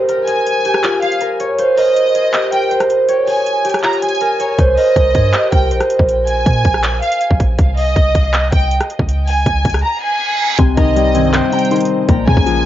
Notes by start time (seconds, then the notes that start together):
Already playing: F4 G4 C5, downlifter
0.09 A#4, closed hi-hat
0.27 G#4 G#5, closed hi-hat
0.46 closed hi-hat
0.65 G4, closed hi-hat
0.74 cross-stick
0.84 F4, clap, closed hi-hat
1.02 G#4 F5, closed hi-hat
1.12 closed hi-hat
1.21 A#4, closed hi-hat
1.40 C#5, closed hi-hat
1.59 C5, closed hi-hat
1.77 A#4 D#5, open hi-hat
1.96 closed hi-hat
2.15 G#4, closed hi-hat
2.34 G4, clap, closed hi-hat
2.52 A#4 G5, closed hi-hat
2.71 C5, closed hi-hat
2.80 cross-stick, closed hi-hat
2.90 closed hi-hat
3.09 C#5, closed hi-hat
3.27 G#4 G#5, open hi-hat
3.46 closed hi-hat
3.65 G4, closed hi-hat
3.70 closed hi-hat
3.74 cross-stick, closed hi-hat
3.79 closed hi-hat
3.84 F4 A#5, clap, closed hi-hat
3.93 closed hi-hat
4.02 G#4 G#5, closed hi-hat
4.09 closed hi-hat
4.15 closed hi-hat
4.21 A#4, closed hi-hat
4.40 C#5, closed hi-hat
4.59 C2 C5, kick, closed hi-hat
4.77 A#4 D#5, open hi-hat
4.96 C2, kick, closed hi-hat
5.15 G2 G#4, kick, closed hi-hat
5.34 G4, clap, closed hi-hat
5.52 C2 A#4 G5, kick, closed hi-hat
5.71 A#1 C5, closed hi-hat
5.81 cross-stick, closed hi-hat
5.90 closed hi-hat
5.99 A#1, kick
6.09 closed hi-hat
6.27 G#5, closed hi-hat
6.46 A#2, kick, closed hi-hat
6.65 A#1, kick, closed hi-hat
6.74 cross-stick
6.84 clap, closed hi-hat
7.02 F5, closed hi-hat
7.12 closed hi-hat
7.21 closed hi-hat
7.31 A#1, kick
7.40 kick, closed hi-hat
7.59 C2, kick, closed hi-hat
7.77 D#5, open hi-hat
7.96 C2, kick, closed hi-hat
8.15 C2, kick, closed hi-hat
8.34 clap, closed hi-hat
8.52 C2 G5, kick, closed hi-hat
8.71 closed hi-hat
8.80 cross-stick, closed hi-hat
8.90 closed hi-hat
8.99 C#2, kick
9.09 closed hi-hat
9.27 G#5, open hi-hat
9.46 C#2, kick, closed hi-hat
9.65 C#2, kick, closed hi-hat
9.70 closed hi-hat
9.74 cross-stick, closed hi-hat
9.79 closed hi-hat
9.83 A#5, reverse cymbal
10.02 G#5
10.58 C2 C3 G3 D#4 C5 C6, kick, closed hi-hat
10.77 C2 D#3 D#5 A#5, kick, closed hi-hat
10.96 G3, closed hi-hat
11.15 C2 G2 D#3 C4 G#5, closed hi-hat
11.33 C5 G5, clap, closed hi-hat
11.52 C3 G5 A#5, closed hi-hat
11.59 closed hi-hat
11.65 closed hi-hat
11.71 D#3 C6, closed hi-hat
11.76 closed hi-hat
11.80 closed hi-hat
11.85 closed hi-hat
12.08 A#1 A#2 G#3 C#4 A#4 A#5, kick, closed hi-hat
12.27 A#2 C#3 G#5, kick
12.37 A#1, kick
12.46 F3, closed hi-hat